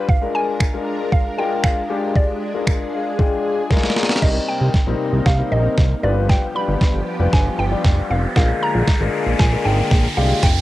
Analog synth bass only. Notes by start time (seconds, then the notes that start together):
4.22 C2
4.61 C2
4.87 A#1
5.13 C2
5.26 C2
5.52 A#1
5.78 C2
6.03 G1
6.68 G1
6.94 G1
7.20 F1
7.33 G1
7.59 G1
7.85 F1
8.10 F1
8.36 A#1
8.75 A#1
9.01 G#1
9.27 A#1
9.40 A#1
9.65 G#1
9.91 A#1
10.17 C2
10.43 F1